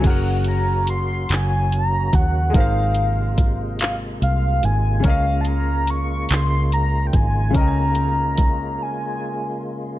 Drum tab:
CC |x-----|------|------|------|
HH |xxxxxx|xxxxxx|xxxxxx|xxx---|
CP |---x--|---x--|---x--|------|
BD |o----o|o-o---|o----o|o-o---|